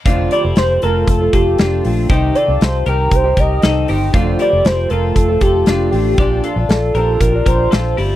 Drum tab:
HH |xxxxxxxo|xxxxxxxo|xxxxxxxo|xxxxxxxo|
SD |--o---o-|--o---o-|--o---o-|--o---o-|
BD |o---oo--|o---oo--|o---oo--|o---oo--|